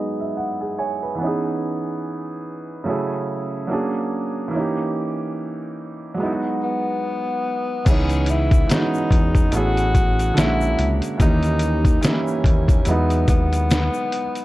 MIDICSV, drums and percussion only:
0, 0, Header, 1, 2, 480
1, 0, Start_track
1, 0, Tempo, 833333
1, 689, Time_signature, 4, 2, 24, 8
1, 8323, End_track
2, 0, Start_track
2, 0, Title_t, "Drums"
2, 4527, Note_on_c, 9, 49, 83
2, 4529, Note_on_c, 9, 36, 109
2, 4529, Note_on_c, 9, 42, 68
2, 4532, Note_on_c, 9, 82, 74
2, 4584, Note_off_c, 9, 49, 0
2, 4587, Note_off_c, 9, 36, 0
2, 4587, Note_off_c, 9, 42, 0
2, 4590, Note_off_c, 9, 82, 0
2, 4662, Note_on_c, 9, 42, 38
2, 4669, Note_on_c, 9, 82, 44
2, 4720, Note_off_c, 9, 42, 0
2, 4726, Note_off_c, 9, 82, 0
2, 4759, Note_on_c, 9, 42, 69
2, 4773, Note_on_c, 9, 82, 45
2, 4817, Note_off_c, 9, 42, 0
2, 4831, Note_off_c, 9, 82, 0
2, 4903, Note_on_c, 9, 36, 93
2, 4904, Note_on_c, 9, 42, 40
2, 4916, Note_on_c, 9, 82, 50
2, 4961, Note_off_c, 9, 36, 0
2, 4962, Note_off_c, 9, 42, 0
2, 4974, Note_off_c, 9, 82, 0
2, 5008, Note_on_c, 9, 42, 79
2, 5013, Note_on_c, 9, 82, 72
2, 5019, Note_on_c, 9, 38, 117
2, 5066, Note_off_c, 9, 42, 0
2, 5071, Note_off_c, 9, 82, 0
2, 5077, Note_off_c, 9, 38, 0
2, 5152, Note_on_c, 9, 82, 40
2, 5210, Note_off_c, 9, 82, 0
2, 5245, Note_on_c, 9, 36, 98
2, 5253, Note_on_c, 9, 42, 69
2, 5303, Note_off_c, 9, 36, 0
2, 5311, Note_off_c, 9, 42, 0
2, 5384, Note_on_c, 9, 36, 78
2, 5386, Note_on_c, 9, 42, 40
2, 5394, Note_on_c, 9, 82, 48
2, 5441, Note_off_c, 9, 36, 0
2, 5444, Note_off_c, 9, 42, 0
2, 5452, Note_off_c, 9, 82, 0
2, 5483, Note_on_c, 9, 42, 77
2, 5490, Note_on_c, 9, 82, 67
2, 5541, Note_off_c, 9, 42, 0
2, 5547, Note_off_c, 9, 82, 0
2, 5629, Note_on_c, 9, 42, 36
2, 5634, Note_on_c, 9, 82, 45
2, 5687, Note_off_c, 9, 42, 0
2, 5692, Note_off_c, 9, 82, 0
2, 5729, Note_on_c, 9, 36, 86
2, 5729, Note_on_c, 9, 42, 64
2, 5735, Note_on_c, 9, 82, 53
2, 5787, Note_off_c, 9, 36, 0
2, 5787, Note_off_c, 9, 42, 0
2, 5792, Note_off_c, 9, 82, 0
2, 5872, Note_on_c, 9, 42, 42
2, 5875, Note_on_c, 9, 82, 59
2, 5930, Note_off_c, 9, 42, 0
2, 5933, Note_off_c, 9, 82, 0
2, 5973, Note_on_c, 9, 42, 74
2, 5978, Note_on_c, 9, 38, 119
2, 5979, Note_on_c, 9, 82, 71
2, 6031, Note_off_c, 9, 42, 0
2, 6036, Note_off_c, 9, 38, 0
2, 6036, Note_off_c, 9, 82, 0
2, 6112, Note_on_c, 9, 82, 50
2, 6169, Note_off_c, 9, 82, 0
2, 6213, Note_on_c, 9, 42, 66
2, 6271, Note_off_c, 9, 42, 0
2, 6347, Note_on_c, 9, 42, 43
2, 6357, Note_on_c, 9, 82, 45
2, 6405, Note_off_c, 9, 42, 0
2, 6414, Note_off_c, 9, 82, 0
2, 6450, Note_on_c, 9, 36, 106
2, 6452, Note_on_c, 9, 42, 75
2, 6454, Note_on_c, 9, 82, 74
2, 6507, Note_off_c, 9, 36, 0
2, 6509, Note_off_c, 9, 42, 0
2, 6511, Note_off_c, 9, 82, 0
2, 6581, Note_on_c, 9, 42, 36
2, 6591, Note_on_c, 9, 82, 46
2, 6639, Note_off_c, 9, 42, 0
2, 6648, Note_off_c, 9, 82, 0
2, 6678, Note_on_c, 9, 42, 75
2, 6693, Note_on_c, 9, 82, 50
2, 6735, Note_off_c, 9, 42, 0
2, 6751, Note_off_c, 9, 82, 0
2, 6823, Note_on_c, 9, 36, 89
2, 6825, Note_on_c, 9, 42, 45
2, 6835, Note_on_c, 9, 82, 49
2, 6881, Note_off_c, 9, 36, 0
2, 6882, Note_off_c, 9, 42, 0
2, 6892, Note_off_c, 9, 82, 0
2, 6927, Note_on_c, 9, 42, 76
2, 6931, Note_on_c, 9, 82, 76
2, 6938, Note_on_c, 9, 38, 117
2, 6984, Note_off_c, 9, 42, 0
2, 6988, Note_off_c, 9, 82, 0
2, 6996, Note_off_c, 9, 38, 0
2, 7071, Note_on_c, 9, 82, 46
2, 7128, Note_off_c, 9, 82, 0
2, 7166, Note_on_c, 9, 36, 98
2, 7175, Note_on_c, 9, 42, 68
2, 7224, Note_off_c, 9, 36, 0
2, 7232, Note_off_c, 9, 42, 0
2, 7305, Note_on_c, 9, 36, 94
2, 7308, Note_on_c, 9, 42, 46
2, 7313, Note_on_c, 9, 82, 52
2, 7362, Note_off_c, 9, 36, 0
2, 7365, Note_off_c, 9, 42, 0
2, 7370, Note_off_c, 9, 82, 0
2, 7403, Note_on_c, 9, 42, 83
2, 7409, Note_on_c, 9, 82, 63
2, 7460, Note_off_c, 9, 42, 0
2, 7466, Note_off_c, 9, 82, 0
2, 7547, Note_on_c, 9, 42, 37
2, 7550, Note_on_c, 9, 82, 43
2, 7605, Note_off_c, 9, 42, 0
2, 7608, Note_off_c, 9, 82, 0
2, 7648, Note_on_c, 9, 42, 71
2, 7649, Note_on_c, 9, 36, 91
2, 7651, Note_on_c, 9, 82, 57
2, 7706, Note_off_c, 9, 42, 0
2, 7707, Note_off_c, 9, 36, 0
2, 7709, Note_off_c, 9, 82, 0
2, 7791, Note_on_c, 9, 42, 45
2, 7796, Note_on_c, 9, 82, 58
2, 7849, Note_off_c, 9, 42, 0
2, 7854, Note_off_c, 9, 82, 0
2, 7894, Note_on_c, 9, 82, 79
2, 7895, Note_on_c, 9, 42, 68
2, 7900, Note_on_c, 9, 38, 109
2, 7952, Note_off_c, 9, 42, 0
2, 7952, Note_off_c, 9, 82, 0
2, 7957, Note_off_c, 9, 38, 0
2, 8029, Note_on_c, 9, 82, 51
2, 8086, Note_off_c, 9, 82, 0
2, 8135, Note_on_c, 9, 42, 65
2, 8193, Note_off_c, 9, 42, 0
2, 8268, Note_on_c, 9, 42, 40
2, 8272, Note_on_c, 9, 82, 48
2, 8323, Note_off_c, 9, 42, 0
2, 8323, Note_off_c, 9, 82, 0
2, 8323, End_track
0, 0, End_of_file